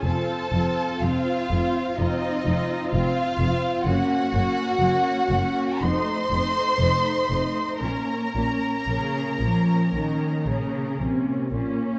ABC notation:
X:1
M:4/4
L:1/8
Q:1/4=61
K:Bbm
V:1 name="Violin section"
=a2 f2 e2 f2 | g4 c'4 | b6 z2 |]
V:2 name="Violin section"
=A2 F2 E2 F2 | G4 c4 | B6 z2 |]
V:3 name="Viola section"
[CF] [CF] [CF] [CF] [CF] [CF] [CF] [CF] | [B,D] [B,D] [B,D] [B,D] [=A,E] [A,E] [A,E] [A,E] | [B,D] [B,D] [B,D] [B,D] [B,D] [B,D] [B,D] [B,D] |]
V:4 name="Cello section" clef=bass
F,, F,, F,, F,, F,, F,, F,, F,, | G,, G,, G,, G,, F,, F,, F,, F,, | B,, B,, D, F, E, D, C, B,, |]
V:5 name="Double bass section" clef=bass
F,,, F,,, F,,, F,,, F,,, F,,, F,,, F,,, | G,,, G,,, G,,, G,,, F,,, F,,, F,,, F,,, | B,,, B,,, B,,, B,,, B,,, B,,, B,,, B,,, |]